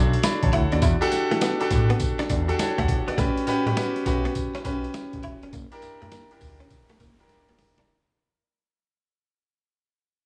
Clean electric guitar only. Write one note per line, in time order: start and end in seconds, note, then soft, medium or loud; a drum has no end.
0.24 muted clean electric guitar stroke soft
0.53 0.64 E4 medium
0.72 0.78 D4 medium
0.82 0.93 E4 medium
1.12 muted clean electric guitar stroke soft
1.31 1.37 A3 medium
1.42 1.52 B3 medium
1.71 muted clean electric guitar stroke soft
1.90 1.96 B3 medium
2.00 muted clean electric guitar stroke soft
2.19 2.25 D4 medium
2.30 2.41 D4 medium
2.78 2.84 A3 medium
2.88 muted clean electric guitar stroke medium
3.08 3.13 B3 medium
3.18 3.29 A3 medium
3.47 muted clean electric guitar stroke soft
3.67 3.72 G3 medium
3.77 3.88 B3 medium
4.06 muted clean electric guitar stroke soft
4.25 4.31 B3 medium
4.36 muted clean electric guitar stroke soft
4.55 4.60 C#4 medium
4.65 4.76 C#4 medium
4.94 muted clean electric guitar stroke soft
5.24 5.35 E4 medium
5.43 5.49 C#4 medium
5.53 5.64 A#3 medium
5.83 muted clean electric guitar stroke soft
6.02 6.07 A3 medium
6.12 6.23 A#3 medium
6.41 muted clean electric guitar stroke soft
6.60 6.66 C#4 medium
6.71 muted clean electric guitar stroke soft
6.90 6.96 A3 medium
7.00 7.11 A#3 medium
7.49 7.55 A#3 medium
7.60 muted clean electric guitar stroke soft
7.79 7.84 D4 medium